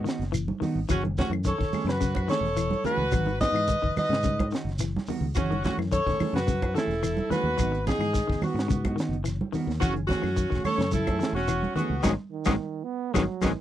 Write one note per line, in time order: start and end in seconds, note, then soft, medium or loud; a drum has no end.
0.04 0.23 D#3 medium
0.04 0.23 B3 medium
0.04 0.23 D#4 medium
0.04 0.23 F#4 medium
0.04 closed hi-hat medium
0.04 shekere soft
0.09 snare medium
0.19 0.51 F#1 medium
0.19 snare soft
0.19 closed hi-hat soft
0.32 0.51 E3 medium
0.32 closed hi-hat medium
0.32 claves medium
0.32 shekere loud
0.48 high conga medium
0.60 0.79 D#3 medium
0.60 0.79 B3 medium
0.60 0.79 D#4 medium
0.60 0.79 F#4 medium
0.60 muted fingered electric bass stroke soft
0.60 open hi-hat medium
0.60 high conga medium
0.60 low conga medium
0.60 shekere soft
0.75 0.86 G#1 medium
0.89 1.21 F#1 medium
0.89 0.98 E3 medium
0.89 1.07 E3 medium
0.89 1.07 C#4 medium
0.89 1.03 C#4 medium
0.89 1.03 F#4 loud
0.89 1.07 G#4 medium
0.89 muted clean electric guitar stroke medium
0.89 kick medium
0.89 closed hi-hat medium
0.89 low conga medium
0.89 claves medium
0.89 shekere medium
1.03 1.22 D#3 medium
1.03 closed hi-hat soft
1.03 high conga medium
1.17 1.34 E3 medium
1.17 1.34 A3 medium
1.17 1.30 C#4 medium
1.17 1.35 C#4 medium
1.17 1.31 F#4 medium
1.17 kick medium
1.17 snare medium
1.17 closed hi-hat soft
1.17 high conga medium
1.17 low conga medium
1.17 shekere soft
1.30 1.51 F#2 medium
1.30 1.40 E3 medium
1.30 claves medium
1.44 1.54 D#3 medium
1.44 1.92 A4 medium
1.44 1.85 C#5 medium
1.44 kick medium
1.44 closed hi-hat medium
1.44 shekere medium
1.58 1.70 E1 medium
1.58 1.77 D#3 medium
1.58 kick medium
1.58 snare soft
1.58 closed hi-hat soft
1.70 1.90 A3 medium
1.70 1.90 C#4 medium
1.70 1.90 G#4 medium
1.70 muted fingered electric bass stroke soft
1.70 open hi-hat medium
1.70 high conga medium
1.70 low conga medium
1.70 shekere soft
1.74 claves medium
1.84 2.28 F#2 medium
1.84 1.96 C#3 medium
1.84 2.29 B4 loud
1.84 closed hi-hat soft
1.89 2.30 F#4 medium
1.89 snare medium
2.01 2.19 C#3 medium
2.01 kick medium
2.01 snare soft
2.01 closed hi-hat medium
2.01 shekere loud
2.15 kick medium
2.15 closed hi-hat soft
2.15 high conga medium
2.15 claves medium
2.28 2.47 D#3 medium
2.28 2.46 E3 medium
2.28 2.46 A3 medium
2.28 2.46 C#4 medium
2.28 2.47 G#4 medium
2.28 2.82 A4 medium
2.28 2.81 C#5 loud
2.28 snare medium
2.28 closed hi-hat medium
2.28 shekere soft
2.41 2.73 E1 medium
2.45 snare soft
2.45 closed hi-hat soft
2.57 2.75 E3 medium
2.57 closed hi-hat medium
2.57 claves medium
2.57 shekere loud
2.71 closed hi-hat soft
2.71 high conga medium
2.84 3.03 D#3 medium
2.84 3.02 E3 medium
2.84 3.02 A3 medium
2.84 3.02 C#4 medium
2.84 3.37 F#4 medium
2.84 3.03 G#4 medium
2.84 3.37 B4 loud
2.84 muted fingered electric bass stroke soft
2.84 closed hi-hat medium
2.84 low conga medium
2.84 shekere soft
2.97 3.08 C#2 medium
3.11 3.45 G#1 medium
3.11 3.30 D#3 medium
3.11 3.21 F#3 medium
3.11 3.31 F#4 medium
3.11 muted clean electric guitar stroke medium
3.11 kick medium
3.11 closed hi-hat medium
3.11 low conga medium
3.11 claves medium
3.11 shekere loud
3.26 3.45 D#3 medium
3.26 closed hi-hat soft
3.26 high conga medium
3.40 3.58 B3 medium
3.40 3.58 D#4 medium
3.40 3.58 F#4 medium
3.40 3.93 B4 medium
3.40 3.93 D#5 loud
3.40 kick medium
3.40 snare medium
3.40 closed hi-hat medium
3.40 high conga loud
3.40 shekere soft
3.52 3.74 G#2 medium
3.52 3.63 E3 medium
3.52 closed hi-hat soft
3.52 claves medium
3.57 snare soft
3.67 3.78 D#3 medium
3.67 kick medium
3.67 closed hi-hat medium
3.67 shekere medium
3.82 3.93 F#1 medium
3.82 4.00 D#3 medium
3.82 kick medium
3.96 4.13 D#3 medium
3.96 4.14 D#4 medium
3.96 4.14 F#4 medium
3.96 4.48 B4 medium
3.96 4.49 D#5 loud
3.96 muted fingered electric bass stroke soft
3.96 muted clean electric guitar stroke medium
3.96 open hi-hat medium
3.96 high conga medium
3.96 low conga medium
3.96 claves medium
3.96 shekere soft
4.09 4.52 G#2 medium
4.09 4.19 C#3 medium
4.09 snare medium
4.09 closed hi-hat soft
4.23 4.42 C#3 medium
4.23 kick medium
4.23 closed hi-hat medium
4.23 high conga medium
4.23 shekere medium
4.39 kick medium
4.39 closed hi-hat soft
4.39 high conga medium
4.39 claves medium
4.51 4.69 D#3 medium
4.51 4.70 D#3 medium
4.51 4.69 D#4 medium
4.51 4.70 F#4 medium
4.51 muted clean electric guitar stroke medium
4.51 snare medium
4.51 closed hi-hat medium
4.51 shekere soft
4.65 4.97 F#1 medium
4.69 snare soft
4.69 closed hi-hat soft
4.79 4.98 E3 medium
4.79 closed hi-hat medium
4.79 claves medium
4.79 shekere loud
4.84 snare soft
4.96 snare soft
4.96 high conga medium
5.07 5.26 D#3 medium
5.07 5.25 D#3 medium
5.07 5.25 B3 medium
5.07 5.26 F#4 medium
5.07 muted fingered electric bass stroke soft
5.07 muted clean electric guitar stroke medium
5.07 open hi-hat medium
5.07 low conga medium
5.07 shekere soft
5.21 5.31 C#2 medium
5.35 5.68 F#1 medium
5.35 5.53 E3 medium
5.35 5.46 E3 medium
5.35 5.62 C#4 medium
5.35 5.53 C#4 medium
5.35 5.61 F#4 loud
5.35 5.53 G#4 medium
5.35 muted clean electric guitar stroke medium
5.35 kick loud
5.35 closed hi-hat medium
5.35 low conga medium
5.35 claves medium
5.35 shekere loud
5.51 5.69 D#3 medium
5.51 closed hi-hat soft
5.51 high conga medium
5.63 5.81 E3 medium
5.63 5.81 A3 medium
5.63 5.81 C#4 medium
5.63 5.77 C#4 medium
5.63 5.77 F#4 loud
5.63 kick medium
5.63 snare medium
5.63 closed hi-hat soft
5.63 high conga loud
5.63 low conga medium
5.63 shekere soft
5.78 5.99 F#2 medium
5.78 5.87 E3 medium
5.78 snare soft
5.78 claves medium
5.92 6.01 D#3 medium
5.92 6.32 A4 medium
5.92 6.31 C#5 loud
5.92 kick medium
5.92 closed hi-hat medium
5.92 shekere medium
6.06 6.16 E1 medium
6.06 6.24 D#3 medium
6.06 6.19 A3 soft
6.06 6.19 C#4 soft
6.06 6.20 G#4 soft
6.06 kick medium
6.06 snare soft
6.06 closed hi-hat soft
6.20 6.37 E3 medium
6.20 6.37 A3 medium
6.20 6.37 C#4 medium
6.20 6.37 G#4 medium
6.20 open hi-hat medium
6.20 high conga medium
6.20 low conga medium
6.20 claves medium
6.20 shekere soft
6.33 6.75 F#2 medium
6.33 6.43 C#3 medium
6.33 6.73 F#4 loud
6.33 6.73 B4 loud
6.33 snare medium
6.33 closed hi-hat soft
6.47 6.65 C#3 medium
6.47 kick medium
6.47 snare soft
6.47 closed hi-hat medium
6.47 high conga medium
6.47 shekere loud
6.62 kick medium
6.62 closed hi-hat soft
6.62 high conga medium
6.62 claves medium
6.75 6.93 D#3 medium
6.75 6.92 E3 medium
6.75 6.93 A3 medium
6.75 6.93 C#4 medium
6.75 7.29 E4 medium
6.75 6.93 G#4 medium
6.75 7.27 A4 medium
6.75 snare medium
6.75 closed hi-hat medium
6.75 shekere soft
6.88 7.20 E1 medium
6.88 closed hi-hat soft
6.92 snare soft
7.03 7.21 E3 medium
7.03 snare soft
7.03 closed hi-hat medium
7.03 claves medium
7.03 shekere loud
7.17 closed hi-hat soft
7.17 high conga medium
7.29 7.49 D#3 medium
7.29 7.48 E3 medium
7.29 7.48 A3 medium
7.29 7.48 C#4 medium
7.29 7.84 F#4 medium
7.29 7.48 G#4 medium
7.29 7.82 B4 loud
7.29 muted fingered electric bass stroke soft
7.29 snare soft
7.29 closed hi-hat medium
7.29 high conga medium
7.29 low conga medium
7.29 shekere soft
7.43 7.54 D#2 medium
7.57 7.91 G#1 medium
7.57 7.76 D#3 medium
7.57 7.67 F#3 medium
7.57 7.76 B3 medium
7.57 7.76 D#4 medium
7.57 7.77 F#4 medium
7.57 kick medium
7.57 closed hi-hat medium
7.57 claves medium
7.57 shekere medium
7.72 muted clean electric guitar stroke medium
7.72 closed hi-hat soft
7.87 8.04 D#3 medium
7.87 8.04 B3 medium
7.87 8.04 D#4 medium
7.87 8.48 D#4 medium
7.87 8.04 F#4 medium
7.87 8.39 G#4 loud
7.87 kick medium
7.87 snare medium
7.87 closed hi-hat medium
7.87 high conga medium
7.87 low conga medium
7.87 shekere soft
7.99 8.21 G#2 medium
7.99 8.09 E3 medium
7.99 closed hi-hat soft
7.99 claves medium
8.04 snare soft
8.13 8.23 D#3 medium
8.13 kick medium
8.13 snare soft
8.13 closed hi-hat medium
8.13 shekere medium
8.27 8.39 F#1 medium
8.27 8.46 D#3 medium
8.27 8.41 B3 soft
8.27 8.43 D#4 soft
8.27 kick medium
8.27 snare soft
8.42 8.59 D#3 medium
8.42 8.59 B3 medium
8.42 8.98 F#4 medium
8.42 8.60 F#4 medium
8.42 open hi-hat medium
8.42 high conga medium
8.42 low conga medium
8.42 claves medium
8.42 shekere soft
8.46 9.00 B3 medium
8.54 8.97 G#2 medium
8.54 muted clean electric guitar stroke medium
8.54 closed hi-hat soft
8.59 snare medium
8.68 8.87 C#3 medium
8.68 kick medium
8.68 closed hi-hat medium
8.68 high conga medium
8.68 shekere medium
8.85 8.98 B3 soft
8.85 8.99 D#4 medium
8.85 8.98 F#4 medium
8.85 kick medium
8.85 closed hi-hat soft
8.85 high conga medium
8.85 claves medium
8.96 9.15 D#3 medium
8.96 9.16 D#3 medium
8.96 9.16 B3 medium
8.96 9.16 D#4 medium
8.96 closed hi-hat medium
8.96 shekere soft
9.00 9.16 F#4 medium
9.00 snare medium
9.09 9.41 F#1 medium
9.13 closed hi-hat soft
9.24 9.43 E3 medium
9.24 snare soft
9.24 closed hi-hat medium
9.24 claves medium
9.24 shekere loud
9.41 high conga medium
9.52 9.71 D#3 medium
9.52 9.71 B3 medium
9.52 9.71 F#4 medium
9.52 muted fingered electric bass stroke soft
9.52 open hi-hat medium
9.52 low conga medium
9.52 shekere soft
9.67 9.78 D#2 medium
9.67 snare soft
9.80 10.13 F#1 medium
9.80 9.90 E3 loud
9.80 9.99 E3 medium
9.80 9.94 C#4 medium
9.80 9.99 C#4 medium
9.80 9.93 F#4 loud
9.80 10.00 G#4 medium
9.80 muted clean electric guitar stroke medium
9.80 kick medium
9.80 closed hi-hat medium
9.80 low conga medium
9.80 claves medium
9.80 shekere loud
9.94 10.13 D#3 medium
9.94 closed hi-hat soft
10.07 10.61 C#4 medium
10.07 10.60 F#4 loud
10.07 kick medium
10.07 closed hi-hat soft
10.07 high conga medium
10.07 low conga medium
10.07 shekere soft
10.11 10.27 E3 medium
10.11 10.28 A3 medium
10.11 10.27 C#4 medium
10.11 10.28 G#4 medium
10.11 snare medium
10.22 10.44 F#2 medium
10.22 10.31 E3 medium
10.22 snare soft
10.22 claves medium
10.36 10.46 D#3 medium
10.36 kick medium
10.36 closed hi-hat medium
10.36 shekere medium
10.50 10.62 E1 medium
10.50 10.69 D#3 medium
10.50 10.66 G#4 soft
10.50 kick medium
10.50 snare soft
10.50 closed hi-hat soft
10.54 10.67 A3 soft
10.54 10.67 C#4 soft
10.64 10.83 A3 medium
10.64 10.83 C#4 medium
10.64 10.92 A4 loud
10.64 10.91 C#5 loud
10.64 muted fingered electric bass stroke soft
10.64 open hi-hat medium
10.64 high conga medium
10.64 low conga medium
10.64 claves medium
10.64 shekere soft
10.78 11.20 F#2 medium
10.78 10.87 C#3 medium
10.78 snare medium
10.78 closed hi-hat soft
10.91 11.10 C#3 medium
10.91 11.32 E4 loud
10.91 11.32 A4 medium
10.91 kick medium
10.91 closed hi-hat medium
10.91 high conga medium
10.91 shekere loud
11.07 11.22 A3 soft
11.07 11.22 C#4 soft
11.07 11.22 G#4 medium
11.07 kick medium
11.07 closed hi-hat soft
11.07 high conga medium
11.07 claves medium
11.19 11.38 D#3 medium
11.19 11.39 E3 medium
11.19 11.39 A3 medium
11.19 snare medium
11.19 closed hi-hat medium
11.19 shekere soft
11.24 11.39 C#4 medium
11.24 11.39 G#4 medium
11.33 11.65 E1 medium
11.33 11.74 C#4 medium
11.33 11.73 F#4 loud
11.33 closed hi-hat soft
11.38 snare soft
11.48 11.66 E3 medium
11.48 closed hi-hat medium
11.48 claves medium
11.48 shekere medium
11.63 closed hi-hat soft
11.63 high conga medium
11.75 11.94 D#3 medium
11.75 11.94 E3 medium
11.75 11.94 A3 medium
11.75 12.02 B3 medium
11.75 11.94 C#4 medium
11.75 12.02 F#4 medium
11.75 muted fingered electric bass stroke soft
11.75 closed hi-hat medium
11.75 low conga medium
11.75 shekere soft
11.79 11.95 G#4 medium
11.90 12.00 C#2 medium
12.03 12.15 G#1 loud
12.03 12.13 D#3 medium
12.03 12.13 F#3 loud
12.03 12.13 G#3 medium
12.03 12.14 G#3 loud
12.03 12.11 B3 medium
12.03 12.14 B3 medium
12.03 12.10 D#4 loud
12.03 12.14 D#4 medium
12.03 12.10 F#4 loud
12.03 12.10 G#4 loud
12.03 kick medium
12.03 high conga loud
12.03 claves medium
12.03 shekere loud
12.07 snare medium
12.31 12.86 D#3 medium
12.45 12.56 G#1 medium
12.45 12.55 D#3 medium
12.45 12.55 F#3 medium
12.45 12.55 G#3 loud
12.45 12.56 G#3 loud
12.45 12.53 B3 loud
12.45 12.55 B3 loud
12.45 12.52 D#4 loud
12.45 12.56 D#4 loud
12.45 12.52 F#4 medium
12.45 12.52 G#4 medium
12.45 kick medium
12.45 high conga loud
12.45 claves medium
12.45 shekere loud
12.49 snare medium
12.84 13.15 B3 loud
13.13 13.26 G#1 loud
13.13 13.24 D#3 medium
13.13 13.58 F#3 loud
13.13 13.24 F#3 medium
13.13 13.24 G#3 medium
13.13 13.25 G#3 medium
13.13 13.22 B3 loud
13.13 13.25 B3 medium
13.13 13.22 D#4 medium
13.13 13.25 D#4 medium
13.13 13.22 F#4 medium
13.13 13.22 G#4 medium
13.13 kick medium
13.13 high conga loud
13.13 claves loud
13.13 shekere loud
13.18 snare medium
13.41 13.54 G#1 medium
13.41 13.51 D#3 medium
13.41 13.51 F#3 medium
13.41 13.51 G#3 medium
13.41 13.53 G#3 loud
13.41 13.50 B3 loud
13.41 13.52 B3 loud
13.41 13.50 D#4 medium
13.41 13.52 D#4 loud
13.41 13.50 F#4 medium
13.41 13.50 G#4 medium
13.41 kick medium
13.41 high conga medium
13.41 claves loud
13.41 shekere loud
13.46 snare medium
13.57 13.61 D#3 medium